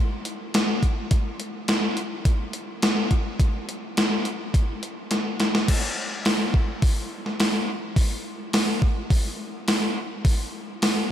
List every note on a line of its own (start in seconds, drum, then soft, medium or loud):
0.25 closed hi-hat medium
0.54 snare loud
0.54 closed hi-hat medium
0.83 kick medium
0.83 closed hi-hat medium
1.11 kick loud
1.11 closed hi-hat medium
1.40 closed hi-hat medium
1.68 snare loud
1.68 closed hi-hat medium
1.97 closed hi-hat medium
2.25 kick loud
2.25 closed hi-hat medium
2.53 closed hi-hat medium
2.82 snare loud
2.82 closed hi-hat medium
3.11 kick medium
3.11 closed hi-hat medium
3.40 kick loud
3.40 closed hi-hat medium
3.69 closed hi-hat medium
3.97 snare loud
3.97 closed hi-hat medium
4.25 closed hi-hat medium
4.54 kick loud
4.54 closed hi-hat medium
4.83 closed hi-hat medium
5.11 snare medium
5.11 closed hi-hat medium
5.40 snare medium
5.40 closed hi-hat medium
5.55 snare medium
5.68 kick loud
5.68 open hi-hat medium
5.68 crash loud
6.25 snare loud
6.25 open hi-hat medium
6.54 kick medium
6.82 kick loud
6.82 open hi-hat medium
7.26 snare soft
7.40 snare loud
7.40 open hi-hat medium
7.96 kick loud
7.96 open hi-hat medium
8.53 snare loud
8.53 open hi-hat medium
8.82 kick medium
9.10 kick loud
9.10 open hi-hat medium
9.68 snare loud
9.68 open hi-hat medium
10.25 kick loud
10.25 open hi-hat medium
10.82 snare loud
10.82 open hi-hat medium